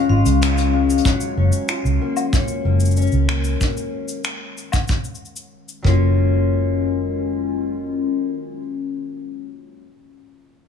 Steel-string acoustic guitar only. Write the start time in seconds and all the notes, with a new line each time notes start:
Already playing: C#3 G#3 C#4
0.09 F4
0.41 C#4
0.73 G#3
1.06 F#3
1.37 C#4
1.69 F4
2.01 A#3
2.33 C#4
2.65 A#3
2.97 C#4
3.28 A#3
5.82 F#3 A#3
5.87 C#4 F4